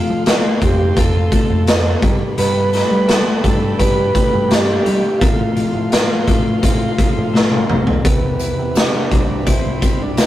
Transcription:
Already playing: clean electric guitar F3 A3, transistor combo organ F4, string section A4 F5 C6
0.10 picked electric bass F3
0.26 clean electric guitar A3, snare, closed hi-hat
0.30 transistor combo organ F4
0.61 picked electric bass F2, clean electric guitar C4, transistor combo organ G4, kick, closed hi-hat
0.96 picked electric bass F2, clean electric guitar F4, transistor combo organ A4, kick, closed hi-hat
1.32 clean electric guitar A3, kick, closed hi-hat
1.50 picked electric bass F2
1.67 clean electric guitar C4, snare, closed hi-hat
2.02 picked electric bass G2, clean electric guitar G3, string section A4 D5 G5 B5, kick, closed hi-hat
2.38 picked electric bass G2, clean electric guitar G3, transistor combo organ B4, closed hi-hat
2.73 clean electric guitar A3, snare, closed hi-hat
2.91 picked electric bass G3
3.08 clean electric guitar A3, transistor combo organ A4, snare, closed hi-hat
3.44 picked electric bass G2, clean electric guitar D4, kick, closed hi-hat
3.79 picked electric bass G2, clean electric guitar G4, transistor combo organ B4, kick, closed hi-hat
4.15 clean electric guitar A3, kick, closed hi-hat
4.34 picked electric bass G2
4.49 clean electric guitar D4, transistor combo organ G4, snare, closed hi-hat
4.86 picked electric bass G3, clean electric guitar G4, closed hi-hat
5.19 picked electric bass A2, clean electric guitar A2, transistor combo organ F4, string section F5 C6, kick, closed hi-hat
5.56 clean electric guitar F3, closed hi-hat
5.75 picked electric bass A2
5.90 clean electric guitar F3, transistor combo organ F4, snare, closed hi-hat
6.27 picked electric bass A2, clean electric guitar A3, kick, closed hi-hat
6.62 picked electric bass A2, clean electric guitar C4, kick, closed hi-hat
6.98 clean electric guitar F3, kick, closed hi-hat
7.17 picked electric bass A2
7.34 clean electric guitar A3, snare
7.52 high tom
7.69 picked electric bass A1, clean electric guitar C4, mid tom
7.87 picked electric bass B1, floor tom
8.03 clean electric guitar C3, transistor combo organ B3, string section G4 E5 B5, kick, closed hi-hat
8.39 clean electric guitar E3, closed hi-hat, tambourine
8.59 picked electric bass C3
8.75 clean electric guitar G3, transistor combo organ D4, snare, closed hi-hat, tambourine
9.11 picked electric bass C2, clean electric guitar C4, kick, closed hi-hat
9.46 picked electric bass C2, transistor combo organ C4, clean electric guitar E4, kick, closed hi-hat, tambourine
9.81 clean electric guitar G3, kick, closed hi-hat, tambourine
10.01 picked electric bass C2, transistor combo organ D4
10.17 clean electric guitar C4, snare, closed hi-hat, tambourine

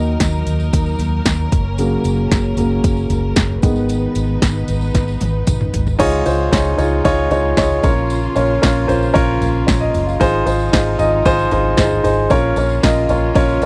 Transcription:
Already playing: fingered electric bass D#2, grand piano D#3 F#3 A#3 D#4 D#5, string section F#3 A#3 D#4 A#4
0.20 fingered electric bass D#2, kick, snare, closed hi-hat, tambourine
0.47 fingered electric bass D#2, closed hi-hat, floor tom, tambourine
0.60 tambourine
0.73 fingered electric bass D#2, kick, closed hi-hat, tambourine
0.86 tambourine
0.99 fingered electric bass D#2, closed hi-hat, floor tom, tambourine
1.25 fingered electric bass D#2, kick, snare, closed hi-hat, tambourine
1.39 floor tom
1.51 fingered electric bass F#1, string section C#4, kick, closed hi-hat, floor tom, tambourine
1.78 grand piano C#3 F#3 A#3, closed hi-hat, tambourine
2.04 fingered electric bass F#1, closed hi-hat, tambourine
2.31 fingered electric bass F#1, kick, snare, closed hi-hat, tambourine
2.57 fingered electric bass F#1, grand piano C#3 F#3 A#3, closed hi-hat, floor tom, tambourine
2.84 fingered electric bass F#1, kick, closed hi-hat, tambourine
2.97 tambourine
3.10 fingered electric bass F#1, closed hi-hat, floor tom, tambourine
3.36 fingered electric bass F#1, kick, snare, closed hi-hat, tambourine
3.50 floor tom
3.62 fingered electric bass G#1, grand piano D#3 G#3 B3, string section G#3 B3 D#4 B4, kick, closed hi-hat, floor tom, tambourine
3.76 tambourine
3.89 closed hi-hat, tambourine
4.15 fingered electric bass G#1, closed hi-hat, tambourine
4.42 fingered electric bass G#1, kick, snare, closed hi-hat, tambourine
4.68 fingered electric bass G#1, closed hi-hat, floor tom, tambourine
4.81 tambourine
4.94 fingered electric bass G#1, kick, snare, closed hi-hat, tambourine
5.08 tambourine
5.20 fingered electric bass G#1, closed hi-hat, high tom, tambourine
5.47 fingered electric bass G#1, kick, closed hi-hat, mid tom, tambourine
5.61 mid tom
5.73 fingered electric bass G#1, closed hi-hat, floor tom, tambourine
5.87 floor tom, tambourine
5.99 fingered electric bass C#2, grand piano G#2 D#4 F4 G#4 C#5, string section C#3 G#3 D#4 F4, kick, crash, ride, tambourine
6.25 fingered electric bass C#2, grand piano D#4 F4 G#4 C5, ride, tambourine
6.52 fingered electric bass C#2, grand piano D#4 F4 G#4 C#5, kick, snare, ride, tambourine
6.77 fingered electric bass C#2, grand piano D#4 F4 G#4 C#5, floor tom, ride, tambourine
7.04 fingered electric bass C#2, grand piano D#4 F4 G#4 C#5, kick, ride, tambourine
7.31 fingered electric bass C#2, grand piano D#4 F4 G#4 C#5, floor tom, ride, tambourine
7.57 fingered electric bass C#2, grand piano D#4 F4 G#4 C#5, kick, snare, ride, tambourine
7.71 floor tom
7.83 fingered electric bass A#1, string section F3 A#3, grand piano C#4 F4 A#4 C#5, kick, floor tom, ride, tambourine
8.10 ride, tambourine
8.35 fingered electric bass A#1, grand piano C#4 F4 A#4 C#5, ride, tambourine
8.62 fingered electric bass A#1, grand piano C#4 F4 A#4 C#5, kick, snare, ride, tambourine
8.87 fingered electric bass A#1, grand piano C#4 F4 A#4 C5, floor tom, ride, tambourine
9.03 tambourine
9.14 fingered electric bass A#1, grand piano C#4 F4 A#4 C#5, kick, ride, tambourine
9.41 fingered electric bass A#1, floor tom, ride, tambourine
9.67 fingered electric bass A#1, grand piano C#5, kick, snare, ride, tambourine
9.80 grand piano D#5, floor tom
9.94 fingered electric bass F#1, floor tom, ride, tambourine
10.07 grand piano F5, tambourine
10.20 fingered electric bass G#1, string section C3 G#3 D#4, grand piano D#4 F4 G#4 C5, kick, ride, tambourine
10.45 fingered electric bass G#1, grand piano D#4 F4 G#4 C5, ride, tambourine
10.59 tambourine
10.72 fingered electric bass G#1, grand piano D#4 F4 G#4 C5, kick, snare, ride, tambourine
10.99 fingered electric bass G#1, grand piano D#4 F4 G#4 D#5, floor tom, ride, tambourine
11.25 fingered electric bass G#1, grand piano D#4 F4 G#4 C5, kick, ride, tambourine
11.39 tambourine
11.51 fingered electric bass G#1, grand piano D#4 F4 G#4 C5, floor tom, ride, tambourine
11.77 fingered electric bass G#1, grand piano D#4 F4 G#4 C5, kick, snare, ride, tambourine
11.91 floor tom
12.03 fingered electric bass G#1, grand piano D#4 F4 G#4 C5, floor tom, ride, tambourine
12.30 fingered electric bass A#1, string section C#3 A#3 F4, grand piano C#4 F4 A#4 C#5, kick, ride, tambourine
12.56 fingered electric bass A#1, grand piano C#4 F4 A#4 C#5, ride, tambourine
12.69 tambourine
12.83 fingered electric bass A#1, grand piano C#4 F4 A#4 D#5, kick, snare, ride, tambourine
13.09 fingered electric bass A#1, grand piano C#4 F4 A#4 C#5, floor tom, ride, tambourine
13.35 fingered electric bass A#1, grand piano C#4 F4 A#4 C#5, kick, ride, tambourine
13.49 tambourine
13.62 fingered electric bass A#1, floor tom, ride, tambourine

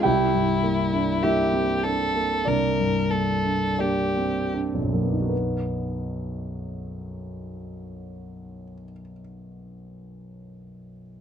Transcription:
0.03 grand piano C2 G4 G5, violin E4
0.34 grand piano G2
0.63 grand piano A#3
0.93 grand piano D4
1.23 grand piano A#3 E4 E5, violin G4
1.53 grand piano C4
1.83 grand piano D4, violin A4
2.15 grand piano A#3
2.45 grand piano C2 D4 D5, violin A#4
2.80 grand piano G2
3.10 grand piano A#3, violin A4
3.45 grand piano D4
3.79 grand piano A#3 D4 D5, violin G4
4.17 grand piano C4
4.54 grand piano D4
4.74 grand piano B1
4.83 grand piano F#2
4.93 grand piano F#3 A#3
5.02 grand piano B3
5.12 grand piano D#4
5.21 grand piano F#4
5.29 grand piano B4

